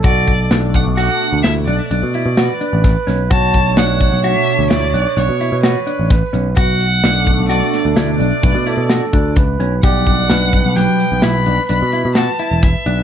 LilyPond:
<<
  \new Staff \with { instrumentName = "Violin" } { \time 7/4 \key b \minor \tempo 4 = 129 d''4 r8 fis''8 fis''4 e''8 d''8 d''2~ d''8 r8 | a''4 fis''4 e''4 d''4 cis''4 b'4. r8 | fis''2 d''4 d''2. r4 | fis''2 g''4 b''4 b''4 a''4 e''4 | }
  \new Staff \with { instrumentName = "Flugelhorn" } { \time 7/4 \key b \minor a'1~ a'8 r8 b'2 | cis''1. b'4~ | b'8 r8 a'2. b'8 a'4. b'4 | d''4 b'1. | }
  \new Staff \with { instrumentName = "Clean electric guitar" } { \time 7/4 \key b \minor fis'4 d'4 fis'4 e'8 d'8 d'8 e'8 fis'8 d'4 cis'8 | fis'4 d'4 fis'4 e'8 d'8 d'8 e'8 fis'8 d'4 cis'8 | fis'4 d'4 fis'4 e'8 d'8 d'8 e'8 fis'8 d'4 cis'8 | g'4 d'4 fis4 e'8 d'8 d'8 e'8 fis'8 e'4 d'8 | }
  \new Staff \with { instrumentName = "Analog synth pad" } { \time 7/4 \key b \minor r4 <b, a d'>8 r8 <b, a d'>8 r1 r8 | r8 <b, a d'>8 r4 <b, a d'>8 r1 r8 | r4 <b, a d'>4 <b, a d'>4. r2. r8 | <b, g d'>8 r4 <b, g b>8 r1 r4 | }
  \new Staff \with { instrumentName = "Picked electric bass" } { \clef bass \time 7/4 \key b \minor b,,4 b,,8. b,,8 r8 d,16 d,8 b,,16 r16 b,,16 b,8 b,8 r8 a,,8 r16 b,,8 | b,,4 b,,8. b,,8 r8 d,16 d,8 b,,16 r16 b,,16 b,8 b,8 r8 a,,8 r16 b,,8 | b,,4 b,,8. b,,8 r8 d,16 d,8 b,,16 r16 b,,16 b,8 b,8 r16 d,8 cis,8 b,,8 | b,,4 b,,8. b,,8 r8 b,,16 b,,8 b,,16 r16 b,,16 b,8 b,8 r8 e,,8 r16 b,,8 | }
  \new DrumStaff \with { instrumentName = "Drums" } \drummode { \time 7/4 <hh bd>8 <hh bd>8 <hh sn>8 <hh bd>8 hh8 hh8 <hh sn>8 hh8 hh8 hh8 <hh sn>8 hh8 <hh bd sn>8 <hh sn>8 | <hh bd>8 <hh bd>8 <hh sn>8 <hh bd>8 hh8 hh8 <hh sn>8 hh8 hh8 hh8 <hh sn>8 hh8 <hh bd sn>8 hh8 | <hh bd>8 hh8 <hh sn>8 <hh bd>8 hh8 <hh sn>8 <hh sn>8 hh8 <hh bd>8 hh8 <hh sn>8 <hh bd>8 <hh bd>8 hh8 | <hh bd>8 <hh bd>8 <hh sn>8 <hh bd>8 <hh sn>8 hh8 <hh sn>8 hh8 hh8 hh8 <hh sn>8 hh8 <hh bd sn>8 hh8 | }
>>